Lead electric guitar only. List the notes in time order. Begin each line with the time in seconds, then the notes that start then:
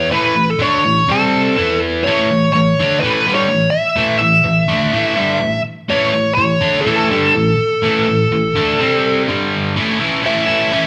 Already playing: C#5
0.12 B4
0.50 A4
0.62 C#5
1.11 A4
2.04 C#5
2.53 C#5
3.00 B4
3.35 C#5
3.70 E5
4.18 E5
5.90 C#5
6.35 C#5
6.81 A4
10.26 E5